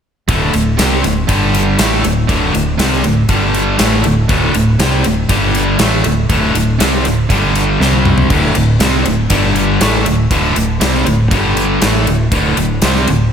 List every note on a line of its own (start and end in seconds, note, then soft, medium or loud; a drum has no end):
0.28 0.52 D1 medium
0.28 0.53 D2 medium
0.28 0.53 A2 loud
0.28 0.53 D3 loud
0.28 kick loud
0.28 ride medium
0.54 0.77 D1 medium
0.54 0.74 D2 medium
0.54 0.74 A2 medium
0.54 ride medium
0.79 1.02 C2 loud
0.79 1.03 C3 medium
0.79 1.03 G3 medium
0.79 1.04 C4 loud
0.79 snare loud
0.79 ride medium
1.04 1.27 D1 medium
1.04 1.24 D2 medium
1.04 1.24 A2 medium
1.04 snare soft
1.04 ride medium
1.28 1.75 G1 medium
1.28 1.78 G2 medium
1.28 1.78 D3 loud
1.28 1.79 G3 medium
1.28 kick medium
1.28 ride loud
1.54 ride medium
1.79 2.02 A1 medium
1.79 2.03 A2 medium
1.79 2.03 E3 medium
1.79 2.04 A3 loud
1.79 snare loud
1.79 ride loud
2.04 2.27 D1 medium
2.04 2.24 D2 medium
2.04 2.24 A2 medium
2.04 ride medium
2.29 2.52 D1 medium
2.29 2.53 D2 medium
2.29 2.53 A2 loud
2.29 2.54 D3 medium
2.29 kick loud
2.29 ride medium
2.54 2.78 D1 medium
2.54 2.74 D2 medium
2.54 2.74 A2 medium
2.54 ride medium
2.79 3.02 C2 medium
2.79 3.03 C3 medium
2.79 3.04 G3 medium
2.79 3.04 C4 loud
2.79 snare loud
2.79 ride medium
2.93 snare soft
3.04 3.28 D1 medium
3.04 3.24 D2 medium
3.04 3.24 A2 medium
3.04 ride medium
3.29 3.76 G1 medium
3.29 3.78 G2 medium
3.29 3.79 D3 loud
3.29 3.79 G3 loud
3.29 kick loud
3.29 ride medium
3.54 ride medium
3.79 4.03 A1 medium
3.79 4.03 A2 medium
3.79 4.04 E3 medium
3.79 4.04 A3 loud
3.79 snare loud
3.79 ride medium
4.04 4.28 D1 medium
4.04 4.25 D2 medium
4.04 4.25 A2 medium
4.04 ride medium
4.29 4.53 D1 loud
4.29 4.54 D2 loud
4.29 4.54 A2 loud
4.29 4.54 D3 loud
4.29 kick loud
4.29 ride medium
4.54 4.78 D1 medium
4.54 4.75 D2 medium
4.54 4.75 A2 medium
4.54 ride medium
4.80 5.03 C2 medium
4.80 5.04 C3 medium
4.80 5.04 G3 medium
4.80 5.04 C4 loud
4.80 snare loud
4.80 ride medium
5.04 5.28 D1 medium
5.04 5.25 D2 medium
5.04 5.25 A2 medium
5.04 ride medium
5.29 5.76 G1 medium
5.29 5.79 G2 medium
5.29 5.79 D3 loud
5.29 5.80 G3 loud
5.29 kick loud
5.29 ride loud
5.55 ride medium
5.79 6.03 A1 loud
5.79 6.04 A2 medium
5.79 6.04 E3 medium
5.79 6.05 A3 medium
5.79 snare loud
5.79 ride loud
6.04 6.28 D1 medium
6.04 6.25 D2 medium
6.04 6.25 A2 medium
6.04 ride medium
6.29 6.53 D1 loud
6.29 6.54 D2 medium
6.29 6.54 A2 medium
6.29 6.55 D3 loud
6.29 kick loud
6.29 ride medium
6.55 6.78 D1 medium
6.55 6.75 D2 medium
6.55 6.75 A2 medium
6.55 ride medium
6.80 7.03 C2 medium
6.80 7.04 C3 medium
6.80 7.05 G3 medium
6.80 7.05 C4 loud
6.80 snare loud
6.80 ride medium
7.05 7.28 D1 medium
7.05 7.25 D2 medium
7.05 7.25 A2 medium
7.05 snare soft
7.05 ride medium
7.30 7.76 G1 medium
7.30 7.80 G2 medium
7.30 7.80 D3 loud
7.30 7.80 G3 medium
7.30 kick loud
7.30 ride medium
7.55 ride medium
7.80 8.27 C2 medium
7.80 8.29 C3 medium
7.80 8.30 G3 medium
7.80 8.30 C4 loud
7.80 snare medium
7.93 high tom medium
8.05 mid tom medium
8.18 floor tom medium
8.30 8.54 D1 loud
8.30 8.55 D2 medium
8.30 8.55 A2 medium
8.30 8.55 D3 medium
8.30 kick loud
8.30 crash medium
8.55 8.79 D1 medium
8.55 8.76 D2 medium
8.55 8.76 A2 medium
8.55 ride medium
8.80 9.04 C2 medium
8.80 9.05 C3 medium
8.80 9.05 G3 medium
8.80 9.06 C4 medium
8.80 snare loud
8.80 ride medium
9.05 9.29 D1 medium
9.05 9.26 D2 medium
9.05 9.26 A2 medium
9.05 ride medium
9.30 9.77 G1 medium
9.30 9.80 G2 medium
9.30 9.80 D3 loud
9.30 9.81 G3 medium
9.30 kick medium
9.30 ride medium
9.56 ride medium
9.81 10.04 A1 medium
9.81 10.05 A2 medium
9.81 10.06 E3 medium
9.81 10.06 A3 loud
9.81 snare loud
9.81 ride loud
10.06 10.29 D1 medium
10.06 10.26 D2 medium
10.06 10.26 A2 medium
10.06 ride medium
10.31 10.54 D1 loud
10.31 10.55 D2 medium
10.31 10.55 A2 loud
10.31 10.56 D3 loud
10.31 kick loud
10.31 ride loud
10.56 10.79 D1 medium
10.56 10.76 D2 medium
10.56 10.76 A2 medium
10.56 ride medium
10.81 11.04 C2 medium
10.81 11.06 C3 medium
10.81 11.06 G3 medium
10.81 11.06 C4 medium
10.81 snare loud
10.81 ride loud
10.95 snare soft
11.06 11.29 D1 medium
11.06 11.26 D2 medium
11.06 11.27 A2 medium
11.06 ride medium
11.31 11.78 G1 medium
11.31 11.80 G2 medium
11.31 11.81 D3 loud
11.31 11.82 G3 loud
11.31 kick loud
11.31 ride medium
11.57 ride medium
11.81 12.05 A1 loud
11.81 12.06 A2 medium
11.81 12.06 E3 loud
11.81 12.06 A3 loud
11.81 snare loud
11.81 ride medium
12.07 12.30 D1 medium
12.07 12.27 D2 medium
12.07 12.27 A2 medium
12.07 ride medium
12.32 12.55 D1 loud
12.32 12.56 D2 medium
12.32 12.57 A2 loud
12.32 12.57 D3 loud
12.32 kick loud
12.32 ride medium
12.57 12.80 D1 medium
12.57 12.77 D2 medium
12.57 12.78 A2 medium
12.57 ride medium
12.82 13.06 C2 loud
12.82 13.07 C3 medium
12.82 13.07 G3 medium
12.82 13.08 C4 loud
12.82 snare loud
12.82 ride medium
12.96 snare soft
13.07 13.31 D1 medium
13.07 13.28 D2 medium
13.07 13.28 A2 medium
13.07 ride medium